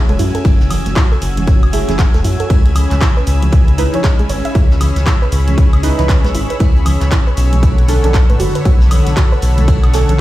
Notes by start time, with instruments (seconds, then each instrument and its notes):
Already playing: synth stab A3 E4 G#4, analog synth pad C#4 F#4 G#5 E6 G#6
0.09 analog synth bass E1, synth arpeggio sound A4, closed hi-hat, high conga, cabasa
0.19 analog synth bass F#2, synth arpeggio sound E4, open hi-hat, cabasa
0.35 synth arpeggio sound A4, closed hi-hat, ride, cabasa
0.45 analog synth bass F#1, synth arpeggio sound E4, kick, closed hi-hat, ride, high conga, cabasa
0.61 snare, cabasa
0.70 open hi-hat, ride, low conga, cabasa, high woodblock
0.86 analog synth bass F#1, snare, closed hi-hat, high conga, cabasa
0.96 synth arpeggio sound E4, kick, snare, clap, closed hi-hat, ride, cabasa
1.12 synth arpeggio sound A4, cabasa
1.21 analog synth bass F#1, open hi-hat, ride, cabasa
1.37 closed hi-hat, high conga, low conga, cabasa
1.47 kick, closed hi-hat, ride, cabasa
1.63 closed hi-hat, ride, cabasa, high woodblock
1.73 synth stab A3 E4 G#4, open hi-hat, ride, high conga, cabasa
1.88 analog synth bass F#1, synth stab A3 E4 G#4, snare, closed hi-hat, low conga, cabasa
1.98 synth arpeggio sound F#5, kick, snare, clap, closed hi-hat, ride, cabasa
2.14 analog synth bass E1, synth arpeggio sound A4, snare, closed hi-hat, high conga, cabasa
2.24 analog synth bass F#2, synth arpeggio sound E4, open hi-hat, ride, cabasa
2.40 synth arpeggio sound A4, closed hi-hat, ride, cabasa
2.50 analog synth bass C#2, analog synth pad C#4 G#4 B5, synth arpeggio sound E4, kick, closed hi-hat, ride, high conga, cabasa
2.66 closed hi-hat, ride, cabasa
2.75 open hi-hat, ride, low conga, cabasa, high woodblock
2.91 analog synth bass C#2, snare, clap, closed hi-hat, high conga, cabasa
3.01 synth arpeggio sound E4, kick, snare, clap, closed hi-hat, ride, cabasa
3.17 synth arpeggio sound B4, cabasa
3.27 analog synth bass C#2, open hi-hat, ride, cabasa
3.42 closed hi-hat, ride, high conga, low conga, cabasa
3.53 kick, closed hi-hat, ride, cabasa
3.68 closed hi-hat, cabasa
3.78 synth stab D#4 E4 B4, open hi-hat, ride, high conga, cabasa
3.93 synth stab D#4 E4 C#5, closed hi-hat, low conga, cabasa
4.03 synth arpeggio sound G#4, kick, snare, clap, closed hi-hat, ride, cabasa
4.19 synth arpeggio sound G#4, closed hi-hat, high conga, cabasa
4.29 analog synth bass G#1, synth arpeggio sound C#5, open hi-hat, cabasa
4.45 synth arpeggio sound E5, closed hi-hat, ride, cabasa
4.55 analog synth bass C#2, synth arpeggio sound E4, analog synth pad C#5 E6, kick, closed hi-hat, ride, high conga, cabasa
4.71 snare, cabasa
4.80 open hi-hat, ride, low conga, cabasa, high woodblock
4.96 analog synth bass C#2, snare, closed hi-hat, high conga, cabasa
5.06 synth arpeggio sound E4, kick, snare, clap, closed hi-hat, ride, cabasa
5.22 synth arpeggio sound B4, cabasa
5.32 analog synth bass C#2, open hi-hat, ride, cabasa
5.48 closed hi-hat, high conga, low conga, cabasa
5.58 kick, closed hi-hat, ride, cabasa
5.73 closed hi-hat, ride, cabasa, high woodblock
5.83 synth stab D#4 E4 B4, open hi-hat, ride, high conga, cabasa
5.98 analog synth bass C#2, synth stab D#4 E4 B4, snare, closed hi-hat, low conga, cabasa
6.09 synth arpeggio sound G#5, kick, snare, clap, closed hi-hat, ride, cabasa
6.24 analog synth bass B1, synth arpeggio sound B4, snare, closed hi-hat, high conga, cabasa
6.34 analog synth bass G#1, synth arpeggio sound E4, open hi-hat, ride, cabasa
6.50 synth arpeggio sound B4, closed hi-hat, ride, cabasa
6.60 analog synth bass C#2, synth arpeggio sound E4, kick, closed hi-hat, ride, high conga, cabasa
6.75 ride, cabasa
6.85 open hi-hat, ride, low conga, cabasa, high woodblock
7.01 analog synth bass C#2, snare, clap, closed hi-hat, high conga, cabasa
7.11 synth arpeggio sound E4, kick, snare, clap, closed hi-hat, ride, cabasa
7.27 synth arpeggio sound B4, cabasa
7.37 analog synth bass B1, open hi-hat, ride, cabasa
7.53 closed hi-hat, ride, high conga, low conga, cabasa
7.63 analog synth pad D3 A4 F#5, kick, closed hi-hat, ride, cabasa
7.78 closed hi-hat, cabasa
7.88 synth stab C#4 D4 A4, open hi-hat, ride, high conga, cabasa
8.03 analog synth bass B1, synth stab C#4 D4 A4, closed hi-hat, low conga, cabasa
8.13 synth arpeggio sound A5, kick, snare, clap, closed hi-hat, ride, cabasa
8.30 analog synth bass A1, synth arpeggio sound B4, closed hi-hat, high conga, cabasa
8.40 analog synth bass F#1, synth arpeggio sound F#4, open hi-hat, cabasa
8.55 synth arpeggio sound B4, closed hi-hat, ride, cabasa
8.65 analog synth bass B1, synth arpeggio sound F#4, kick, closed hi-hat, ride, high conga, cabasa
8.81 snare, cabasa
8.91 open hi-hat, ride, low conga, cabasa, high woodblock
9.07 analog synth bass B1, snare, closed hi-hat, high conga, cabasa
9.17 synth arpeggio sound F#4, kick, snare, clap, closed hi-hat, ride, cabasa
9.32 synth arpeggio sound B4, cabasa
9.42 analog synth bass B1, open hi-hat, ride, cabasa
9.58 closed hi-hat, high conga, low conga, cabasa
9.68 analog synth pad C#6, kick, closed hi-hat, ride, cabasa
9.84 closed hi-hat, ride, cabasa, high woodblock
9.93 synth stab C#4 D4 A4, snare, open hi-hat, ride, high conga, cabasa
10.08 analog synth bass B1, synth stab C#4 D4 A4, closed hi-hat, low conga, cabasa